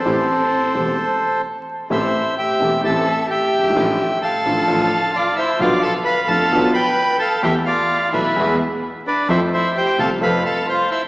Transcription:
<<
  \new Staff \with { instrumentName = "Bandoneon" } { \time 4/4 \key a \minor \tempo 4 = 130 <a' c''>2. r4 | <c'' e''>4 <e'' g''>4 <e'' a''>4 <e'' g''>4~ | <e'' g''>4 <f'' a''>2 <d'' f''>8 <c'' e''>8 | <d'' f''>8 <f'' a''>8 <f'' b''>8 <f'' a''>4 <g'' b''>4 <f'' a''>8 |
<e'' g''>8 <d'' f''>4 <b' e''>4 r4 <b' d''>8 | <c'' e''>8 <c'' e''>8 <c'' g''>8 <f'' a''>8 <f'' b''>8 <f'' a''>8 <c'' f''>8 <c'' e''>8 | }
  \new Staff \with { instrumentName = "Violin" } { \time 4/4 \key a \minor c'2. r4 | e'4 g'4 a'4 g'4~ | g'4 a'2 f'8 e'8 | f'8 a'8 b'8 a'4 b'4 a'8 |
g'8 f'4 e'4 r4 d'8 | e'8 e'8 g'8 a'8 b'8 a'8 f'8 e'8 | }
  \new Staff \with { instrumentName = "String section" } { \time 4/4 \key a \minor <c' g' a'>8 r4 <c' g' a'>8 r2 | <c' g' a'>8 r4 <c' g' a'>8 <c' g' a'>8 r4. | <d' f' a'>8 r4 <d' f' a'>8 <d' f' a'>8 r4. | <d' f' b'>8 r4 <d' f' b'>8 <d' f' b'>8 r4. |
<b e' a'>8 r4 <b e' a'>8 <b e' gis'>8 r4. | <c' f' a'>8 r4 <c' f' a'>8 <c' f' a'>8 r4. | }
  \new Staff \with { instrumentName = "Grand piano" } { \clef bass \time 4/4 \key a \minor <a,, a, e a c' g'>8 r4 <e,, e, e a c' g'>8 r2 | <a,, a, e a c' g'>8 r4 <e,, e, e a c' g'>8 <a,, a, e a c' g'>8 r4 r32 fis,,32 g,,32 gis,,32 | <a,, a, d f a f'>8 r4 <a,, a, d f a f'>8 <a,, a, d f a f'>8 r4. | <b,, b, d f b f'>8 r4 <f,, f, d f b f'>8 <b,, b, d f b f'>8 r4. |
<e, e a b a'>8 r4 <b,, b, e a b a'>8 <e, e gis b gis'>8 r4. | <f, f a c' a'>8 r4 <c, c f a c' a'>8 <f, f a c' a'>8 r4. | }
  \new Staff \with { instrumentName = "Double bass" } { \clef bass \time 4/4 \key a \minor a,,8 r4 e,,8 r2 | a,,8 r4 e,,8 a,,8 r4 g,,8 | a,,8 r4 a,,8 a,,8 r4. | b,,8 r4 f,,8 b,,8 r4. |
e,8 r4 b,,8 e,8 r4. | f,8 r4 c,8 f,8 r4. | }
>>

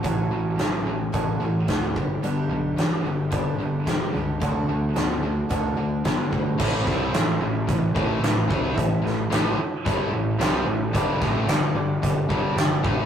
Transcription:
<<
  \new Staff \with { instrumentName = "Upright piano" } { \time 4/4 \key a \mixolydian \tempo 4 = 110 r1 | r1 | r1 | <e' a' cis''>8 <e' a' cis''>8 <e' a' cis''>8 <e' a' cis''>8 <e' a' cis''>8 <e' a' cis''>8 <e' a' b'>8 <e' a' cis''>8 |
<e' a' e''>8 <e' a' b'>8 <e' a' cis''>8 <e' a' cis''>8 <e' a' cis''>8 <e' a' cis''>8 <e' a' cis''>8 <e' a' cis''>8 | <d' g' d''>8 <d' g' a'>8 <d' g' d''>8 <d' g' d''>8 <d' g' d''>8 <d' g' d''>8 <d' g' d''>8 <d' g' e''>8 | }
  \new Staff \with { instrumentName = "Twelve-string acoustic guitar" } { \time 4/4 \key a \mixolydian <a, e fis a cis' fis'>4 <fis a cis' fis'>4 <a, e fis a cis' fis'>8 <fis a cis' fis'>4 <g b d' g'>8 | <g, d g b d' g'>4 <g b d' g'>8 <g b d' g'>8 <g, d g b d' g'>8 <g b d' g'>4 <g b d' g'>8 | <d fis a d' fis'>4 <fis a d' fis'>8 <a d' fis'>8 <d fis a d' fis'>8 <a d' fis'>4 <a d' fis'>8 | r1 |
r1 | r1 | }
  \new Staff \with { instrumentName = "Distorted electric guitar" } { \clef bass \time 4/4 \key a \mixolydian <a, e>8 <a, e>8 <a, fis>8 <a, e>8 <a, e>8 <a, e>8 <a, fis>8 <g, d>8 | <g, d>8 <g, d>8 <g, e>8 <g, d>8 <g, d>8 <g, d>8 <g, e>8 <g, d>8 | <d a>8 <d a>8 <d b>8 <d a>8 <d a>8 <d a>8 <d b>8 <d a>8 | <a, e a>8 <c g c'>8 <a, e>8 <a, e>8 <a, e>8 <a, e a>8 <a, e>8 <c g c'>8 |
<a, e>8 <a, e>8 <a, e a>8 r8 <g, d g>8 <a, e>8 <c g c'>8 <a, e>8 | <g, d g>8 <a, e a>8 <g, d>8 <g, d>8 <g, d>8 <g, d g>8 <g, d>8 <a, e a>8 | }
  \new Staff \with { instrumentName = "Overdriven electric guitar" } { \clef bass \time 4/4 \key a \mixolydian <a, e>8 <a, e>8 <a, fis>8 <a, e>8 <a, e>8 <a, e>8 <a, fis>8 <g, d>8 | <g, d>8 <g, d>8 <g, e>8 <g, d>8 <g, d>8 <g, d>8 <g, e>8 <g, d>8 | <d a>8 <d a>8 <d b>8 <d a>8 <d a>8 <d a>8 <d b>8 <d a>8 | <a, e a>8 <c g c'>8 <a, e>8 <a, e>8 <a, e>8 <a, e a>8 <a, e>8 <c g c'>8 |
<a, e>8 <a, e>8 <a, e a>8 r8 <g, d g>8 <a, e>8 <c g c'>8 <a, e>8 | <g, d g>8 <a, e a>8 <g, d>8 <g, d>8 <g, d>8 <g, d g>8 <g, d>8 <a, e a>8 | }
  \new Staff \with { instrumentName = "Picked electric bass" } { \clef bass \time 4/4 \key a \mixolydian a,,8 a,,8 a,,4 a,,8 a,,8 d,8 g,,8 | g,,8 b,,8 g,,8 g,,8 g,,8 g,,8 g,,8 cis,8 | d,8 d,8 d,4 d,8 d,8 g,4 | a,,8 c,8 a,,8 a,,8 a,,8 a,,8 a,,8 c,8 |
a,,8 a,,8 a,,8 r8 g,,8 a,,8 c,8 a,,8 | g,,8 a,,8 g,,8 g,,8 g,,8 g,,8 g,,8 a,,8 | }
  \new DrumStaff \with { instrumentName = "Drums" } \drummode { \time 4/4 <hh bd>4 <hh sn>4 <hh bd>4 <hh bd sn>8 bd8 | hh4 <hh sn>4 <hh bd>4 <hh bd sn>4 | <hh bd>4 <hh sn>4 <hh bd>4 <hh bd sn>8 bd8 | <cymc bd>8 <bd sn>8 <hh sn>4 <hh bd>8 bd8 <hh sn>8 bd8 |
<hh bd>8 sn8 <hh sn>4 <hh bd>4 <hh sn>4 | <hh bd>8 <bd sn>8 <hh sn>4 <hh bd>8 bd8 <hh sn>8 bd8 | }
>>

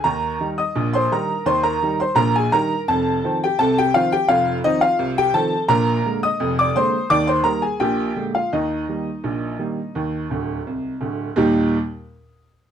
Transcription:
<<
  \new Staff \with { instrumentName = "Upright piano" } { \time 2/4 \key ees \major \tempo 4 = 85 <bes' bes''>8. <ees'' ees'''>8 <c'' c'''>16 <bes' bes''>8 | <c'' c'''>16 <bes' bes''>8 <c'' c'''>16 <bes' bes''>16 <aes' aes''>16 <bes' bes''>8 | <a' a''>8. <g' g''>16 <a' a''>16 <g' g''>16 <f' f''>16 <g' g''>16 | <f' f''>8 <ees' ees''>16 <f' f''>8 <g' g''>16 <a' a''>8 |
<bes' bes''>8. <ees'' ees'''>8 <d'' d'''>16 <c'' c'''>8 | <d'' d'''>16 <c'' c'''>16 <bes' bes''>16 <aes' aes''>16 <g' g''>8. <f' f''>16 | <ees' ees''>2~ | <ees' ees''>4. r8 |
<ees, bes, g bes ees' g'>8 r4. | }
  \new Staff \with { instrumentName = "Upright piano" } { \clef bass \time 2/4 \key ees \major <ees, ees>8 <ees g ees'>8 <bes,, bes,>8 <ees g ees'>8 | <ees, ees>8 <ees g ees'>8 <bes,, bes,>8 <ees g ees'>8 | <f,, f,>8 <ees f c'>8 <c, c>8 <ees f c'>8 | <f,, f,>8 <ees f c'>8 <c, c>8 <ees f c'>8 |
<bes,, bes,>8 <d aes bes>8 <f,, f,>8 <d aes bes>8 | <ees, ees>8 <ees g bes>8 <bes,, bes,>8 <d aes bes>8 | <ees, ees>8 <ees g bes>8 <bes,, bes,>8 <ees g bes>8 | <ees, ees>8 <d,, d,>8 c,8 <d,, d,>8 |
r2 | }
>>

